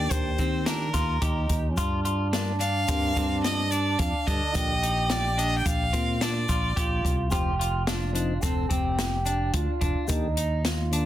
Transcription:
0.00 0.28 D4 medium
0.00 0.95 G4 loud
0.00 0.13 D5 medium
0.10 0.36 D#2 medium
0.10 0.88 D#3 medium
0.10 0.88 A#3 medium
0.10 0.88 G4 medium
0.10 0.67 C5 medium
0.10 kick medium
0.10 closed hi-hat medium
0.10 shaker medium
0.38 0.90 D#3 medium
0.38 0.61 C4 medium
0.38 kick medium
0.38 closed hi-hat medium
0.38 shaker soft
0.66 0.89 D4 medium
0.66 1.49 A#4 medium
0.66 snare loud
0.66 closed hi-hat medium
0.94 1.19 D#2 medium
0.94 1.16 F4 medium
0.94 kick medium
0.94 snare soft
0.94 closed hi-hat soft
0.94 shaker soft
1.22 1.47 D#2 medium
1.22 1.72 D#4 medium
1.22 1.66 G4 medium
1.22 kick loud
1.22 closed hi-hat medium
1.49 1.77 D#2 medium
1.49 kick medium
1.49 closed hi-hat medium
1.71 1.79 C#4 medium
1.77 2.84 G2 loud
1.77 4.57 D4 loud
1.77 2.00 F4 medium
1.77 kick medium
1.77 closed hi-hat medium
1.77 shaker soft
2.05 2.27 F4 medium
2.05 closed hi-hat soft
2.33 2.53 G3 medium
2.33 2.55 D4 medium
2.33 2.53 D4 medium
2.33 2.53 A#4 medium
2.33 snare medium
2.33 closed hi-hat medium
2.60 2.83 D4 medium
2.60 3.39 F5 loud
2.60 closed hi-hat medium
2.60 shaker soft
2.88 3.14 G2 medium
2.88 3.27 G3 medium
2.88 3.11 C4 medium
2.88 3.27 D4 medium
2.88 3.27 A#4 medium
2.88 kick loud
2.88 closed hi-hat medium
2.88 shaker medium
3.16 3.96 G2 medium
3.16 3.61 C4 medium
3.16 kick medium
3.16 closed hi-hat medium
3.44 3.72 D#5 medium
3.44 snare loud
3.44 closed hi-hat medium
3.71 4.16 D4 medium
3.71 4.00 D5 medium
3.71 closed hi-hat medium
3.71 shaker soft
3.99 4.12 F2 medium
3.99 4.29 F5 medium
3.99 kick medium
3.99 closed hi-hat medium
4.27 4.40 G2 medium
4.27 4.72 D3 medium
4.27 5.13 D#5 medium
4.27 kick medium
4.27 closed hi-hat medium
4.54 5.62 A#1 loud
4.54 4.74 A#3 medium
4.54 4.74 F4 medium
4.54 6.50 G4 loud
4.54 4.74 D5 medium
4.54 kick loud
4.54 closed hi-hat medium
4.54 shaker soft
4.83 5.27 D#4 medium
4.83 closed hi-hat medium
5.10 5.40 D5 medium
5.10 snare loud
5.10 closed hi-hat medium
5.10 shaker soft
5.38 5.82 D4 medium
5.38 5.58 D#5 medium
5.38 closed hi-hat medium
5.38 shaker soft
5.58 5.67 G5 medium
5.66 5.91 A#1 medium
5.66 6.24 F5 medium
5.66 kick loud
5.66 closed hi-hat medium
5.66 shaker medium
5.93 6.45 A#2 medium
5.93 6.15 C4 medium
5.93 kick medium
5.93 closed hi-hat medium
6.21 6.43 D4 medium
6.21 7.05 D5 medium
6.21 snare loud
6.21 closed hi-hat medium
6.21 shaker soft
6.49 6.74 A#1 medium
6.49 6.71 F4 medium
6.49 kick medium
6.49 closed hi-hat soft
6.49 shaker soft
6.75 7.02 A#1 medium
6.75 7.28 F4 medium
6.75 7.21 G4 medium
6.75 kick loud
6.75 closed hi-hat medium
7.05 7.34 C2 medium
7.05 kick medium
7.05 closed hi-hat medium
7.31 8.39 F1 medium
7.31 7.51 F3 medium
7.31 7.51 C4 medium
7.31 7.54 F4 medium
7.31 7.88 G4 loud
7.31 7.51 G4 medium
7.31 kick loud
7.31 closed hi-hat medium
7.31 shaker soft
7.60 7.82 F4 medium
7.60 closed hi-hat medium
7.87 8.10 D4 medium
7.87 8.43 F4 medium
7.87 snare loud
7.87 closed hi-hat medium
8.13 8.33 F3 medium
8.13 8.34 C4 medium
8.13 8.37 D4 medium
8.13 8.34 D#4 loud
8.13 closed hi-hat medium
8.13 shaker soft
8.42 8.68 F1 medium
8.42 8.65 C4 medium
8.42 8.71 A4 loud
8.42 kick loud
8.42 closed hi-hat medium
8.42 shaker medium
8.69 9.50 F1 medium
8.69 9.15 C4 medium
8.69 9.55 G4 loud
8.69 kick medium
8.69 closed hi-hat medium
8.69 shaker soft
8.99 snare loud
8.99 closed hi-hat medium
9.26 9.70 D4 medium
9.26 closed hi-hat medium
9.26 shaker soft
9.53 9.66 D2 medium
9.53 10.08 F4 loud
9.53 kick loud
9.53 closed hi-hat medium
9.81 9.94 F1 loud
9.81 10.26 D4 medium
9.81 kick medium
9.81 closed hi-hat medium
10.08 11.05 D#2 loud
10.08 10.28 D#3 medium
10.08 10.28 A#3 medium
10.08 10.60 D#4 loud
10.08 10.28 G4 medium
10.08 kick loud
10.08 closed hi-hat medium
10.08 shaker medium
10.37 10.82 D#4 medium
10.37 closed hi-hat medium
10.65 11.05 F4 medium
10.65 snare loud
10.65 closed hi-hat medium
10.91 11.05 D#3 medium
10.91 11.05 A#3 medium
10.91 11.05 D4 medium
10.91 closed hi-hat medium
10.91 shaker soft

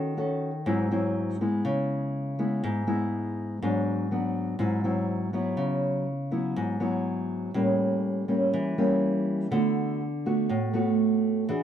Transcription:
0.00 0.64 D#3 medium
0.00 0.14 C#4 medium
0.00 0.14 F#4 medium
0.00 0.14 A4 medium
0.17 0.50 C#4 medium
0.17 0.50 F#4 soft
0.17 0.50 A4 medium
0.66 1.62 G#2 medium
0.66 0.87 F#3 medium
0.66 0.87 C4 medium
0.66 0.87 E4 medium
0.91 1.36 F#3 medium
0.91 1.36 C4 medium
0.91 1.37 E4 medium
1.41 2.35 G#3 medium
1.41 2.35 B3 medium
1.41 2.35 E4 medium
1.65 2.60 C#3 medium
2.39 2.84 G#3 soft
2.39 2.84 B3 medium
2.39 2.84 E4 medium
2.64 3.59 G#2 medium
2.87 3.57 G#3 medium
2.87 3.57 B3 medium
2.87 3.57 E4 medium
3.62 4.58 G#2 medium
3.62 4.07 F#3 soft
3.62 4.07 B3 medium
3.62 4.07 D4 medium
4.11 4.58 F#3 soft
4.11 4.58 B3 medium
4.11 4.58 D4 medium
4.59 5.55 G#2 medium
4.59 4.80 F#3 medium
4.59 4.80 C4 medium
4.59 4.80 E4 medium
4.84 5.29 F#3 medium
4.84 5.29 C4 medium
4.84 5.30 E4 medium
5.33 6.05 F#3 medium
5.33 6.05 B3 medium
5.33 6.05 E4 medium
5.57 6.53 C#3 medium
6.31 6.77 F#3 medium
6.31 6.77 B3 medium
6.31 6.77 E4 medium
6.56 7.52 G#2 medium
6.80 7.50 F#3 medium
6.80 7.50 B3 medium
6.80 7.51 E4 medium
7.54 8.51 A2 medium
7.54 8.24 G3 medium
7.54 8.25 A#3 medium
7.54 8.25 C#4 medium
8.28 8.74 G3 medium
8.28 8.74 A#3 medium
8.28 8.74 C#4 medium
8.54 9.49 E3 medium
8.78 9.48 G3 medium
8.78 9.48 A#3 medium
8.78 9.48 C#4 medium
9.51 10.48 D3 medium
9.51 10.00 A3 medium
9.51 10.00 B3 medium
9.51 10.01 F#4 medium
10.26 10.71 A3 soft
10.26 10.71 B3 medium
10.26 10.71 F#4 medium
10.49 11.46 A2 medium
10.73 11.44 A3 medium
10.73 11.44 B3 medium
10.73 11.45 F#4 medium
11.49 11.63 E3 medium
11.49 11.63 D4 soft
11.49 11.63 F#4 medium
11.49 11.63 G#4 medium

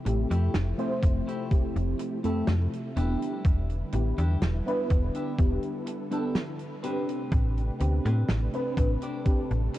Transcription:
0.00 2.93 C3 medium
0.00 2.93 F3 medium
0.00 2.93 A3 medium
0.00 2.93 E4 medium
0.00 4.86 G4 medium
0.05 0.26 A1 medium
0.05 0.35 A3 medium
0.05 0.35 C4 medium
0.05 0.35 E4 medium
0.05 0.35 G4 medium
0.05 muted clean electric guitar stroke medium
0.05 closed hi-hat loud
0.30 0.50 F2 loud
0.30 0.54 A3 medium
0.30 0.55 E4 medium
0.30 0.55 G4 medium
0.30 closed hi-hat medium
0.54 0.74 F1 loud
0.54 snare loud
0.54 closed hi-hat medium
0.78 1.45 A3 loud
0.78 1.45 C4 medium
0.78 1.46 E4 medium
0.78 1.46 C5 loud
0.78 closed hi-hat soft
1.03 1.23 F1 loud
1.03 muted clean electric guitar stroke medium
1.03 kick loud
1.03 closed hi-hat medium
1.27 1.51 A3 medium
1.27 1.52 E4 medium
1.27 1.52 G4 medium
1.27 closed hi-hat medium
1.51 1.71 F1 soft
1.51 2.18 A3 medium
1.51 2.19 C4 medium
1.51 2.19 E4 medium
1.51 2.19 G4 medium
1.51 kick loud
1.51 closed hi-hat medium
1.76 1.95 F1 medium
1.76 closed hi-hat soft
1.99 muted clean electric guitar stroke medium
1.99 closed hi-hat medium
2.24 2.43 F2 soft
2.24 2.52 A3 medium
2.24 2.48 A3 medium
2.24 2.52 C4 medium
2.24 2.52 E4 medium
2.24 2.48 E4 medium
2.24 2.49 G4 medium
2.24 2.53 A4 loud
2.24 closed hi-hat medium
2.47 2.68 F2 medium
2.47 snare loud
2.47 closed hi-hat medium
2.73 closed hi-hat soft
2.96 3.16 E1 medium
2.96 6.80 D3 medium
2.96 6.80 G3 medium
2.96 3.42 B3 medium
2.96 3.74 D4 medium
2.96 3.42 D4 medium
2.96 3.75 E4 medium
2.96 3.42 E4 medium
2.96 6.80 E4 medium
2.96 3.75 G4 loud
2.96 3.42 G4 medium
2.96 9.79 B4 medium
2.96 closed hi-hat medium
3.22 closed hi-hat medium
3.45 3.84 E1 loud
3.45 kick loud
3.45 closed hi-hat medium
3.70 closed hi-hat soft
3.92 4.13 A1 medium
3.92 4.22 B3 medium
3.92 4.22 D4 medium
3.92 4.22 E4 medium
3.92 4.23 G4 medium
3.92 muted clean electric guitar stroke medium
3.92 closed hi-hat medium
4.18 4.37 E2 loud
4.18 4.41 D4 medium
4.18 4.42 E4 medium
4.18 4.42 G4 medium
4.18 closed hi-hat medium
4.41 4.61 E1 loud
4.41 snare loud
4.41 closed hi-hat medium
4.66 5.33 B3 loud
4.66 5.33 D4 medium
4.66 5.33 E4 medium
4.66 5.33 B4 loud
4.66 closed hi-hat soft
4.90 5.10 E1 loud
4.90 6.82 A4 medium
4.90 muted clean electric guitar stroke medium
4.90 kick loud
4.90 closed hi-hat medium
5.14 5.38 D4 medium
5.14 5.39 E4 medium
5.14 5.39 G4 medium
5.14 closed hi-hat medium
5.38 5.58 E1 medium
5.38 6.05 B3 medium
5.38 6.06 D4 medium
5.38 6.06 E4 medium
5.38 6.06 G4 medium
5.38 kick loud
5.38 closed hi-hat medium
5.62 closed hi-hat soft
5.86 muted clean electric guitar stroke medium
5.86 closed hi-hat loud
6.11 6.39 B3 medium
6.11 6.35 D4 medium
6.11 6.39 D4 medium
6.11 6.40 E4 medium
6.11 6.35 E4 medium
6.11 6.36 G4 medium
6.11 6.40 A4 loud
6.11 closed hi-hat medium
6.35 snare loud
6.35 closed hi-hat medium
6.59 closed hi-hat soft
6.83 9.79 C3 medium
6.83 9.79 A3 medium
6.83 7.61 C4 medium
6.83 7.29 C4 medium
6.83 7.29 D4 medium
6.83 7.62 D4 medium
6.83 9.79 D4 medium
6.83 7.62 G4 medium
6.83 8.76 G4 medium
6.83 7.29 G4 medium
6.83 7.29 B4 medium
6.83 7.62 B4 medium
6.83 closed hi-hat loud
7.09 closed hi-hat medium
7.32 7.71 A1 loud
7.32 kick loud
7.32 closed hi-hat medium
7.58 closed hi-hat soft
7.80 8.00 D2 medium
7.80 8.09 B3 medium
7.80 8.09 C4 medium
7.80 8.09 D4 medium
7.80 8.10 G4 medium
7.80 muted clean electric guitar stroke medium
7.80 closed hi-hat medium
8.05 8.24 A2 loud
8.05 8.29 C4 medium
8.05 8.29 D4 medium
8.05 8.29 G4 medium
8.05 8.29 B4 medium
8.05 closed hi-hat medium
8.29 8.49 A1 loud
8.29 snare loud
8.29 closed hi-hat medium
8.53 9.20 C4 medium
8.53 9.20 D4 medium
8.53 9.20 B4 loud
8.53 closed hi-hat soft
8.77 8.97 A1 loud
8.77 9.79 A4 medium
8.77 muted clean electric guitar stroke medium
8.77 kick loud
8.77 closed hi-hat loud
9.02 9.26 C4 medium
9.02 9.26 D4 medium
9.02 9.26 G4 medium
9.02 9.26 D5 medium
9.02 closed hi-hat medium
9.25 9.46 A1 soft
9.25 9.79 C4 medium
9.25 9.79 D4 medium
9.25 9.79 G4 medium
9.25 9.79 B4 medium
9.25 kick loud
9.25 closed hi-hat medium
9.51 9.69 A1 medium
9.51 closed hi-hat soft
9.74 muted clean electric guitar stroke medium
9.74 closed hi-hat loud

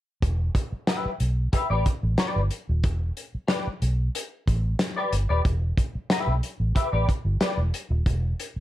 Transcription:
0.22 0.49 E1 medium
0.22 kick loud
0.22 closed hi-hat medium
0.55 kick medium
0.55 closed hi-hat medium
0.72 muted fingered electric bass stroke soft
0.87 1.08 G4 medium
0.87 1.09 B4 medium
0.87 1.09 E5 medium
0.87 snare loud
0.87 closed hi-hat medium
1.06 muted fingered electric bass stroke soft
1.20 1.47 B1 medium
1.20 closed hi-hat medium
1.53 1.65 G4 medium
1.53 1.65 B4 medium
1.53 1.66 E5 medium
1.53 muted fingered electric bass stroke soft
1.53 kick medium
1.53 closed hi-hat medium
1.70 1.83 A1 medium
1.70 1.85 G4 medium
1.70 1.84 B4 medium
1.70 1.84 D5 medium
1.86 kick medium
1.86 closed hi-hat medium
2.03 2.15 A1 medium
2.18 2.39 G4 medium
2.18 2.39 B4 medium
2.18 2.40 D5 medium
2.18 snare loud
2.18 closed hi-hat medium
2.36 2.48 G1 medium
2.51 closed hi-hat medium
2.69 2.84 D#1 medium
2.84 3.10 E1 medium
2.84 kick loud
2.84 closed hi-hat medium
3.17 closed hi-hat medium
3.35 muted fingered electric bass stroke soft
3.48 3.64 G4 medium
3.48 3.64 B4 medium
3.48 3.65 D5 medium
3.48 snare loud
3.48 closed hi-hat medium
3.67 muted fingered electric bass stroke soft
3.82 4.08 B1 medium
3.82 closed hi-hat medium
4.15 closed hi-hat medium
4.48 4.73 A1 medium
4.48 kick medium
4.48 closed hi-hat medium
4.79 snare loud
4.79 closed hi-hat medium
4.97 5.11 G4 medium
4.97 5.11 B4 medium
4.97 5.11 D5 medium
5.12 5.26 G1 medium
5.12 closed hi-hat medium
5.29 5.42 D#1 medium
5.29 5.41 G4 soft
5.29 5.41 B4 medium
5.29 5.40 D5 medium
5.45 5.71 E1 medium
5.45 kick loud
5.45 closed hi-hat medium
5.78 kick medium
5.78 closed hi-hat medium
5.95 muted fingered electric bass stroke soft
6.10 6.31 G4 medium
6.10 6.32 B4 medium
6.10 6.32 E5 medium
6.10 snare loud
6.10 closed hi-hat medium
6.27 6.40 B1 medium
6.43 closed hi-hat medium
6.60 6.72 A1 medium
6.75 6.87 G4 medium
6.75 6.88 B4 medium
6.75 6.88 E5 medium
6.75 kick medium
6.75 closed hi-hat medium
6.92 7.05 A1 medium
6.92 7.07 G4 medium
6.92 7.07 B4 medium
6.92 7.06 D5 medium
7.09 kick medium
7.09 closed hi-hat medium
7.25 7.37 G1 medium
7.41 7.56 G4 medium
7.41 7.57 B4 medium
7.41 7.57 D5 medium
7.41 snare loud
7.41 closed hi-hat medium
7.57 7.70 E1 medium
7.74 closed hi-hat medium
7.90 8.03 D#1 medium
8.06 8.32 E1 medium
8.06 kick loud
8.06 closed hi-hat medium
8.40 closed hi-hat medium
8.56 muted fingered electric bass stroke soft

